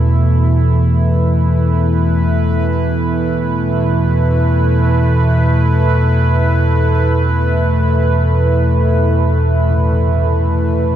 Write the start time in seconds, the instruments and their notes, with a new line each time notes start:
Already playing: synth drone E2 B2, analog synth pad E3 A3 B3 E4
0.94 analog synth pad B4
9.70 church bells A2